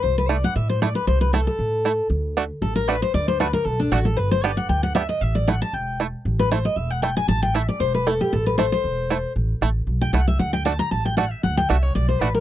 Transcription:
X:1
M:4/4
L:1/8
Q:"Swing" 1/4=232
K:Ador
V:1 name="Steel-string acoustic guitar"
c B d f e c d B | c B A A4- A | z4 A _B =B c | d c B _B A D F A |
B c d f g f e ^d | e d f a g2 z2 | z B c ^d e f g ^g | a g e d c B A G |
A B c c4- c | z4 z g f e | f g a _b a g f e | f g e ^c d =c B _B |]
V:2 name="Five-string banjo"
z2 [A,E] z3 [A,E] z | z2 [A,E] z3 [A,E] z | z2 [A,DF] z3 [A,DF] z | z2 [A,DF] z3 [A,DF] z |
z2 [B,DG] z3 [B,DG] z | z2 [A,E] z3 [A,E] z | z2 [A,E] z3 [A,E] z | z2 [A,E] z3 [A,E] z |
z2 [A,E] z3 [A,E] z | z2 [A,E] z3 [A,E] z | z2 [A,DF] z3 [A,DF] z | z2 [A,DF] z3 [A,DF] z |]
V:3 name="Upright bass" clef=bass
C,,4 A,,4 | C,,4 A,,4 | D,,4 A,,,4 | D,,4 B,,,2 A,,,2 |
G,,,4 D,,4 | A,,,4 E,,,4 | A,,,4 E,,,4 | A,,,4 E,,,4 |
A,,,4 E,,,4 | A,,,2 A,,,2 B,,,2 C,,2 | D,,4 A,,,4 | D,,2 C,,2 B,,,2 A,,,2 |]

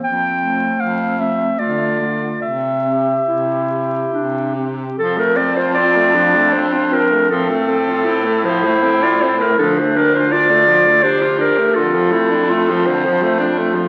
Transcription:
X:1
M:3/4
L:1/16
Q:1/4=78
K:F
V:1 name="Clarinet"
g4 f2 e2 d4 | e8- e2 z2 | A B d c d4 c2 B2 | A6 c3 d c B |
A c B c d4 c2 B2 | A6 c4 z2 |]
V:2 name="Clarinet"
z2 A,4 A,2 A,2 A,2 | z2 C2 E4 D2 C2 | z4 F2 D6 | C4 E8 |
D4 F4 G4 | F2 E2 F2 z2 F4 |]
V:3 name="Alto saxophone"
z2 C4 C2 F2 F2 | z2 G4 G4 G2 | F, A, C F C A, F, A, C F C A, | F, A, C F C A, F, A, C F C A, |
F, A, D F D A, F, A, D F D A, | D, F, A, D A, F, D, F, A, D A, F, |]
V:4 name="Baritone saxophone" clef=bass
F,,4 F,,4 D,4 | C,4 C,4 C,4 | F,,12 | A,,12 |
D,,8- D,,2 z2 | F,,12 |]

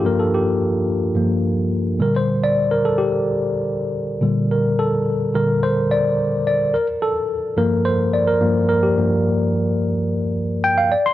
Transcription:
X:1
M:4/4
L:1/16
Q:1/4=108
K:Gdor
V:1 name="Tine electric piano"
B A G2 z8 z2 B c- | c d2 B A G8- G2 z | B2 A4 B2 c2 d4 d2 | B2 A4 B2 c2 d B3 B G- |
G8- G z3 g f d c' |]
V:2 name="Tine electric piano" clef=bass
[G,,F,B,]6 z2 [G,,F,B,]2 z4 [B,,D,G,]2- | [B,,D,G,]12- [B,,D,G,]2 [B,,D,G,]2 | z6 [B,,D,G,]2 z8 | z6 [G,,F,B,]2 z4 [G,,F,B,]2 z2 |
[G,,F,B,]6 z8 z2 |]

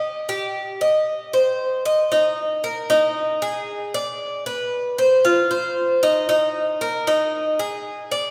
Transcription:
X:1
M:4/4
L:1/8
Q:1/4=115
K:Cm
V:1 name="Cuban tres"
e G2 e2 c2 e | [K:Eb] E2 B E2 A2 d- | d =B2 c F c2 E | E2 B E2 A2 d |]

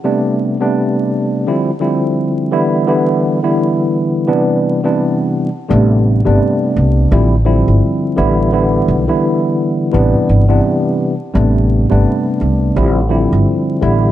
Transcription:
X:1
M:4/4
L:1/16
Q:"Swing 16ths" 1/4=85
K:Am
V:1 name="Tine electric piano" clef=bass
[C,G,A,B,D]3 [C,G,A,B,D]4- [C,G,A,B,D] [D,F,G,CE] z [D,F,G,CE]4 [D,E,G,B,E]2 | [D,E,G,B,E]3 [D,E,G,B,E]4- [D,E,G,B,E] [C,E,G,B,D]3 [C,E,G,B,D]4 z | [C,G,A,B,D]3 [C,G,A,B,D]4- [C,G,A,B,D] [D,F,G,CE] z [D,F,G,CE]4 [D,E,G,B,E]2 | [D,E,G,B,E]3 [D,E,G,B,E]4- [D,E,G,B,E] [C,E,G,B,D]3 [C,E,G,B,D]4 z |
[C,G,A,B,D]3 [C,G,A,B,D]4- [C,G,A,B,D] [D,F,G,CE] z [D,F,G,CE]4 [D,E,G,B,E]2 |]
V:2 name="Upright bass" clef=bass
z16 | z16 | A,,,3 G,,, z2 C,,2 A,,,3 G,,, z2 A,,,2- | A,,,2 B,,, z4 z A,,, z G,,,2 z4 |
A,,,3 G,,, z2 C,,2 A,,,3 G,,, z2 A,,,2 |]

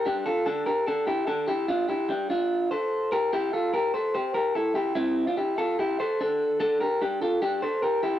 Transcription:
X:1
M:4/4
L:1/16
Q:1/4=146
K:Cmix
V:1 name="Clean electric guitar"
[DG]2 [FA]2 [DA]2 [GB]2 [DA]2 [EG]2 [DA]2 [EG]2 | [DF]2 [EG]2 [DG]2 [DF]4 [Ac]4 [GB]2 | [EG]2 [FA]2 [GB]2 [Ac]2 [Gc]2 [GB]2 [EA]2 [EG]2 | [CE]3 [DF] [EG]2 [FA]2 [EG]2 [Ac]2 [DA]4 |
[DA]2 [GB]2 [DG]2 [FA]2 [DG]2 [Ac]2 [GB]2 [EG]2 |]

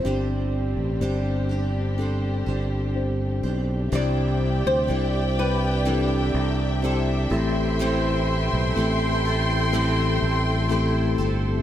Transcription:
X:1
M:4/4
L:1/16
Q:1/4=62
K:C
V:1 name="Nylon-string guitar"
c12 z4 | d3 c3 B6 A4 | c8 z8 |]
V:2 name="String section"
[G,CDG]16 | [Gdeg]12- [Gdeg]2 [Agc']2- | [Agc']16 |]
V:3 name="Tine electric piano"
[CDGc]4 [CDGc]4 [CDGA]4 [CDGc]4 | [CDEGc]4 [CDEGd]4 [CDEGA]4 [CDEGc]2 [A,CEGA]2- | [A,CEGA]4 [A,CEGA]4 [A,CEGA]4 [A,CEGA]4 |]
V:4 name="Tine electric piano" clef=bass
G,,6 z8 z2 | C,6 z8 A,,2- | A,,4 z12 |]
V:5 name="Steel-string acoustic guitar"
[G,DGc]4 [G,DGc]2 [DGc]2 [G,DGc]2 [DGc]4 [DGc]2 | [C,E,G,DEc]4 [G,DE]4 [C,E,G,DE]4 [G,DEc]2 [G,CEA]2 | [A,,E,G,CEA]4 [G,CEA]2 [G,CEA]2 [A,,E,G,CEA]4 [G,CEA]2 [G,CEA]2 |]
V:6 name="French horn section"
z16 | [G,G]6 z2 [D,D]4 z2 [E,E]2- | [E,E]12- [E,E]2 z2 |]
V:7 name="Fingered electric bass" clef=bass
G,,,3 A,,, G,,,6 G,,,4 B,,,2 | C,,3 D,, C,,6 C,,4 A,,,2- | A,,,3 B,,, A,,,6 A,,,4 G,,,2 |]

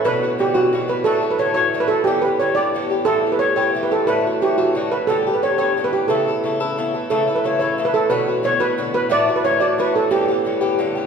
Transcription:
X:1
M:6/8
L:1/16
Q:3/8=119
K:Amix
V:1 name="Steel pan"
B4 G2 F4 B2 | A3 B c2 c3 B A2 | G2 B2 c2 d6 | A3 B c2 c3 B A2 |
B4 G2 F4 B2 | A3 B c2 c3 B G2 | A8- A2 z2 | A3 B c2 c3 B A2 |
B4 c2 B4 B2 | d3 B c2 d2 B2 A2 | G8 z4 |]
V:2 name="Bouzouki"
[B,,D,B,F]2 [D,B,F]2 [B,,D,B,F]2 [B,,D,B,F]2 [B,,D,B,F]2 [D,B,F]2 | [A,,D,A,F]2 [D,A,F]2 [A,,D,A,F]2 [A,,D,A,F]2 [A,,D,A,F]2 [D,A,F]2 | [G,,D,B,G]2 [D,B,G]2 [G,,D,B,G]2 [G,,D,B,G]2 [G,,D,B,G]2 [D,B,G]2 | [G,,E,B,G]2 [E,B,G]2 [G,,E,B,G]2 [G,,E,B,G]2 [G,,E,B,G]2 [E,B,G]2 |
[A,,D,A,F]2 [D,A,F]2 [A,,D,A,F]2 [A,,D,A,F]2 [A,,D,A,F]2 [D,A,F]2 | [G,,D,B,G]2 [D,B,G]2 [G,,D,B,G]2 [G,,D,B,G]2 [G,,D,B,G]2 [D,B,G]2 | [C,B,EA]2 [B,EA]2 [C,B,EA]2 [C,B,EA]2 [C,B,EA]2 [B,EA]2 | [C,A,EA]2 [A,EA]2 [C,A,EA]2 [C,A,EA]2 [C,A,EA]2 [A,EA]2 |
[B,,D,B,F]2 [D,B,F]2 [B,,D,B,F]2 [B,,D,B,F]2 [B,,D,B,F]2 [D,B,F]2 | [A,,D,A,F]2 [D,A,F]2 [A,,D,A,F]2 [A,,D,A,F]2 [A,,D,A,F]2 [D,A,F]2 | [G,,D,B,G]2 [D,B,G]2 [G,,D,B,G]2 [G,,D,B,G]2 [G,,D,B,G]2 [D,B,G]2 |]
V:3 name="Harmonium" clef=bass
[A,,E,]12- | [A,,E,]12- | [A,,E,]12 | [A,,E,]12- |
[A,,E,]12- | [A,,E,]12- | [A,,E,]12 | [A,,E,]12- |
[A,,E,]12- | [A,,E,]12- | [A,,E,]12 |]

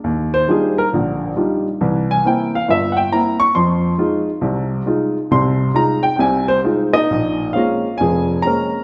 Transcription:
X:1
M:4/4
L:1/8
Q:"Swing" 1/4=136
K:Fm
V:1 name="Grand piano"
z c A B z4 | z a g f =e [_g=g] b d' | c'3 z4 z | c'2 b g [ga] c z [Ee]- |
[K:Bbm] [Ee]2 [Ff]2 [Aa]2 [Bb]2 |]
V:2 name="Grand piano"
E,,2 [G,=DEF] z [B,,,=D,]2 [G,DEF] z | [C,,=E,]2 [B,C=E] z G,,,2 [B,CE] z | [F,,F,]2 [A,EF] z [C,,C,]2 [A,EF] z | [C,,C,]2 [A,EF] z [C,,C,]2 [A,EF] z |
[K:Bbm] [B,,,B,,]2 [A,B,CD] z [F,,,F,,]2 [A,B,CD] z |]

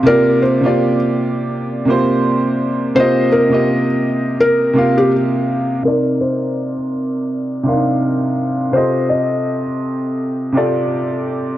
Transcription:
X:1
M:4/4
L:1/16
Q:"Swing 16ths" 1/4=83
K:Cdor
V:1 name="Felt piano"
B2 c3 z8 z3 | c2 B3 z3 B3 G z4 | B2 c3 z8 z3 | c2 e3 z8 z3 |]
V:2 name="Upright piano"
[C,B,FGd]2 z [C,B,FGd]4- [C,B,FGd] z2 [C,B,FGc]4 z2 | [C,B,FGe]2 z [C,B,FGe]4- [C,B,FGe] z2 [C,B,FGf]4 z2 | [C,CEBd]6 z4 [C,CDEBf]4 z2 | [C,CFGAe]6 z4 [C,CFGAd]4 z2 |]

